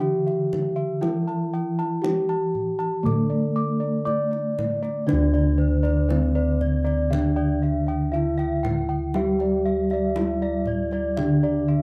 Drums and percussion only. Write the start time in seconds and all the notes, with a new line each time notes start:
0.01 kendang slap
0.28 kendang slap
0.53 kendang high, kendang low
1.03 kendang high
1.29 kendang slap
1.55 kendang slap
1.80 kendang slap
2.04 kendang slap, kendang high
2.29 kendang slap
2.55 kendang low
2.80 kendang slap
3.06 kendang low
4.07 kendang slap, kendang low
4.33 kendang slap
4.59 kendang slap, kendang high, kendang low
4.85 kendang slap
5.09 kendang high
5.35 kendang slap
5.85 kendang slap
6.10 kendang slap, kendang high
6.61 kendang low
6.87 kendang slap
7.13 kendang low
8.14 kendang slap
8.39 kendang slap
8.65 kendang high, kendang low
9.14 kendang high
9.40 kendang slap
9.90 kendang slap
10.16 kendang slap, kendang high
10.66 kendang low
10.91 kendang slap
11.17 kendang low